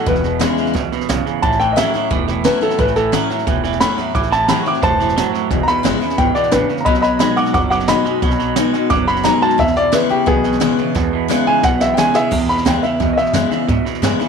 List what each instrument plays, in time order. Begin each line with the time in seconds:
0.06 upright bass E1, steel-string acoustic guitar E2, clean electric guitar E2 B2, upright piano B4, kick, snare
0.15 snare
0.24 clean electric guitar E2 B2, snare
0.39 clean electric guitar E2 C#3, steel-string acoustic guitar E3 G#3 B3 E4, snare, hi-hat pedal
0.57 clean electric guitar E2 C#3, muted upright bass stroke, snare
0.67 snare
0.74 upright bass C#2, clean electric guitar E2 B2, steel-string acoustic guitar F#2, kick, snare
0.91 clean electric guitar E2 B2, muted upright bass stroke, snare
1.01 snare
1.09 upright bass B1, clean electric guitar E2 C#3, steel-string acoustic guitar G#2, snare, hi-hat pedal
1.25 clean electric guitar E2 C#3, muted upright bass stroke, snare
1.42 upright bass A1, steel-string acoustic guitar A2, clean electric guitar A2 E3, upright piano A5, kick, snare
1.52 snare
1.60 clean electric guitar A2 E3, upright piano G5, snare
1.72 steel-string acoustic guitar E3, upright piano D#5
1.77 clean electric guitar A2 F#3, steel-string acoustic guitar A3 C#4 E4, upright piano E5, snare, hi-hat pedal
1.94 clean electric guitar A2 F#3, steel-string acoustic guitar C#4 E4, muted upright bass stroke, snare
2.11 upright bass E1, steel-string acoustic guitar E2, clean electric guitar A2 E3, kick, snare
2.28 clean electric guitar A2 E3, snare
2.44 clean electric guitar A2 F#3, steel-string acoustic guitar E3 A3 C#4 E4, upright piano B4, snare, hi-hat pedal
2.61 clean electric guitar A2 F#3, steel-string acoustic guitar C#4 E4, upright piano A4, muted upright bass stroke, snare
2.70 snare
2.78 upright bass A1, steel-string acoustic guitar A2, clean electric guitar A2 E3, upright piano B4, kick, snare
2.88 snare
2.96 clean electric guitar A2 E3, upright piano A4, snare
3.12 clean electric guitar A2 F#3, steel-string acoustic guitar E3 A3 C#4 E4, snare, hi-hat pedal
3.30 clean electric guitar A2 F#3, steel-string acoustic guitar C#4 E4, muted upright bass stroke, snare
3.39 snare
3.47 upright bass E1, steel-string acoustic guitar E2, clean electric guitar A2 E3, kick, snare
3.64 clean electric guitar A2 E3, snare
3.73 snare
3.80 clean electric guitar A2 F#3, steel-string acoustic guitar E3 A3 C#4 E4, upright piano B5, snare, hi-hat pedal
3.97 clean electric guitar A2 F#3, steel-string acoustic guitar C#4 E4, muted upright bass stroke, snare
4.14 upright bass A1, clean electric guitar A2 E3, steel-string acoustic guitar A2, upright piano D6, kick, snare
4.23 snare
4.31 clean electric guitar A2 E3, upright piano A5, snare
4.44 clean electric guitar A2 F#3, upright piano A#5, snare, hi-hat pedal
4.49 steel-string acoustic guitar E3 G3 C4 E4, upright piano B5
4.63 clean electric guitar A2 F#3, steel-string acoustic guitar E4, upright piano C#6, muted upright bass stroke, snare
4.68 steel-string acoustic guitar C4, upright piano D6
4.74 snare
4.82 upright bass E1, steel-string acoustic guitar G2, clean electric guitar A2 E3, upright piano C5 A5, kick, snare
4.99 clean electric guitar A2 E3, snare
5.09 snare
5.16 steel-string acoustic guitar F#2, clean electric guitar A2 F#3, snare, hi-hat pedal
5.32 clean electric guitar A2 F#3, muted upright bass stroke, snare
5.50 upright bass E1, clean electric guitar E2 B2, steel-string acoustic guitar E2, kick, snare
5.63 upright piano A#5, muted upright bass stroke
5.67 clean electric guitar E2 B2, upright piano B5, snare
5.83 upright bass F#1, clean electric guitar E2 C#3, steel-string acoustic guitar E3 G#3 B3 E4, snare, hi-hat pedal
6.01 clean electric guitar E2 C#3, steel-string acoustic guitar B3 E4, muted upright bass stroke, snare
6.10 snare
6.18 upright bass G#1, clean electric guitar E2 B2, steel-string acoustic guitar G#2, upright piano G5, kick, snare
6.35 clean electric guitar E2 B2, upright piano D5, muted upright bass stroke, snare
6.43 snare
6.51 upright bass A1, clean electric guitar E2 C#3, steel-string acoustic guitar A2, upright piano D4 B4, snare, hi-hat pedal
6.69 clean electric guitar E2 C#3, snare
6.77 upright piano A#5, snare
6.85 upright bass B1, clean electric guitar B2 F#3, steel-string acoustic guitar B2, upright piano D#5 B5, kick, snare
6.94 snare
7.02 clean electric guitar B2 F#3, upright piano D#5 B5, snare
7.19 clean electric guitar B2 G#3, steel-string acoustic guitar F#3 B3 D#4 F#4, upright piano D#5 B5, snare, hi-hat pedal
7.36 clean electric guitar B2 G#3, upright piano F#5 D6, muted upright bass stroke, snare
7.46 snare
7.54 upright bass F#1, steel-string acoustic guitar F#2, clean electric guitar B2 F#3, upright piano F#5 D6, kick, snare
7.70 clean electric guitar B2 F#3, upright piano F#5 D6, snare
7.80 snare
7.88 clean electric guitar B2 G#3, steel-string acoustic guitar F#3 B3 D#4 F#4, upright piano D#5 B5, snare, hi-hat pedal
8.05 clean electric guitar B2 G#3, steel-string acoustic guitar D#4 F#4, muted upright bass stroke, snare
8.22 upright bass B1, clean electric guitar B2 F#3, steel-string acoustic guitar B2, kick, snare
8.31 snare
8.39 clean electric guitar B2 F#3, snare
8.56 clean electric guitar B2 G#3, steel-string acoustic guitar F#3 B3 D#4 F#4, snare, hi-hat pedal
8.73 clean electric guitar B2 G#3, steel-string acoustic guitar D#4 F#4, muted upright bass stroke, snare
8.90 upright bass F#1, steel-string acoustic guitar F#2, clean electric guitar B2 F#3, upright piano D6, kick, snare
9.07 clean electric guitar B2 F#3, upright piano B5, snare
9.16 snare
9.24 clean electric guitar B2 G#3, steel-string acoustic guitar F#3 B3 D#4 F#4, upright piano A#5, snare, hi-hat pedal
9.41 clean electric guitar B2 G#3, upright piano A5, muted upright bass stroke, snare
9.51 snare
9.58 steel-string acoustic guitar E2, upright bass E2, clean electric guitar E2 B2, upright piano E5, kick, snare
9.67 snare
9.76 clean electric guitar E2 B2, upright piano D5, snare
9.92 clean electric guitar E2 C#3, steel-string acoustic guitar E3 G#3 B3 E4, upright piano B4, snare, hi-hat pedal
10.09 clean electric guitar E2 C#3, steel-string acoustic guitar B3 E4, upright piano G4, muted upright bass stroke, snare
10.26 upright bass B1, clean electric guitar E2 B2, steel-string acoustic guitar B2, upright piano B3 G#4, kick, snare
10.44 clean electric guitar E2 B2, snare
10.53 snare
10.60 clean electric guitar E2 C#3, steel-string acoustic guitar E3 G#3 B3 E4, snare, hi-hat pedal
10.77 clean electric guitar E2 C#3, steel-string acoustic guitar B3 E4, muted upright bass stroke, snare
10.95 steel-string acoustic guitar E2, clean electric guitar E2 B2, upright bass E2, kick, snare
11.13 clean electric guitar E2 B2
11.28 clean electric guitar E2 C#3, steel-string acoustic guitar E3 G#3 B3 E4, snare, hi-hat pedal
11.47 clean electric guitar E2 C#3, upright piano G#5, muted upright bass stroke
11.63 upright bass B1, clean electric guitar E2 B2, steel-string acoustic guitar B2, upright piano F#5, kick, snare
11.80 clean electric guitar E2 B2, upright piano E5, snare
11.94 clean electric guitar E2, steel-string acoustic guitar E3, upright piano G5, snare, hi-hat pedal
11.98 clean electric guitar C#3, steel-string acoustic guitar G#3 B3 E4, upright piano G#5
12.14 clean electric guitar E2 C#3, steel-string acoustic guitar B3 E4, upright piano G#4 E5, muted upright bass stroke, snare
12.31 steel-string acoustic guitar E2, upright bass E2, clean electric guitar E2 B2, kick, snare, crash
12.48 clean electric guitar E2 B2, upright piano B5, muted upright bass stroke, snare
12.58 snare
12.65 upright bass D2, clean electric guitar E2 C#3, steel-string acoustic guitar E3 G#3 B3 E4, upright piano G5, snare, hi-hat pedal
12.83 clean electric guitar E2 C#3, steel-string acoustic guitar B3 E4, upright piano E5, snare
13.00 upright bass E2, clean electric guitar E2 B2, steel-string acoustic guitar B2, kick, snare
13.13 upright piano D#5
13.17 clean electric guitar E2 B2, upright piano E5, snare
13.26 snare
13.32 clean electric guitar E2 C#3, upright bass F#2, steel-string acoustic guitar E3 G#3 B3 E4, snare, hi-hat pedal
13.50 clean electric guitar E2 C#3, steel-string acoustic guitar B3 E4, muted upright bass stroke, snare
13.67 clean electric guitar E2 B2, steel-string acoustic guitar E2, upright bass G#2, kick, snare
13.85 clean electric guitar E2 B2, muted upright bass stroke, snare
13.95 snare
14.02 clean electric guitar E2 C#3, upright bass G2, steel-string acoustic guitar E3 G#3 B3 E4, snare, hi-hat pedal
14.19 clean electric guitar E2 C#3, steel-string acoustic guitar B3 E4, muted upright bass stroke, snare